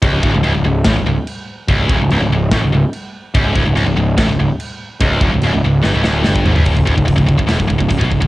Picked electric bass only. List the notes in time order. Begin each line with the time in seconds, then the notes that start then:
0.03 C#1
0.23 D1
0.33 C#1
0.44 C#1
0.55 C#1
0.65 C#1
0.85 A1
0.96 C#1
1.07 C#1
1.68 C#1
1.89 D1
1.99 C#1
2.10 C#1
2.20 C#1
2.30 C#1
2.51 A1
2.62 C#1
2.72 C#1
3.35 C#1
3.56 D1
3.66 C#1
3.76 C#1
3.85 C#1
3.96 C#1
4.17 A1
4.28 C#1
4.39 C#1
5.01 C#1
5.21 D1
5.33 C#1
5.42 C#1
5.54 C#1
5.64 C#1
5.84 G1
5.94 C#1
6.05 D1
6.27 G1
6.46 G#1
6.57 C#1
6.66 C#1
6.76 C#1
6.87 D1
6.97 C#1
7.08 C#1
7.18 C#1
7.29 C#1
7.39 C#1
7.50 E1
7.60 C#1
7.70 C#1
7.81 C#1
7.91 C#1
8.01 B1
8.12 C#1
8.22 C#1